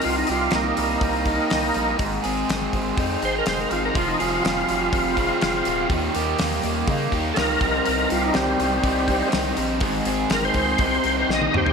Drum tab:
HH |o-o-o-o-o-o-o-o-|o-o-o-o-o-o-o-o-|o-o-o-o-o-o-o-o-|o-o-o-o-o-o-o-o-|
SD |----o-------o---|----o-------o---|----o-------o---|----o-------o---|
T1 |----------------|----------------|----------------|----------------|
T2 |----------------|----------------|----------------|----------------|
FT |----------------|----------------|----------------|----------------|
BD |--------o-o-----|o-----o-o-------|o-------o-o-----|o-------o-o---o-|

HH |o-o-o-o-o-o-o-o-|o-o-o-o-o-o-----|
SD |----o-------o---|----o-------o---|
T1 |----------------|-------------o--|
T2 |----------------|--------------o-|
FT |----------------|---------------o|
BD |--------o-o-----|o-----o-o-------|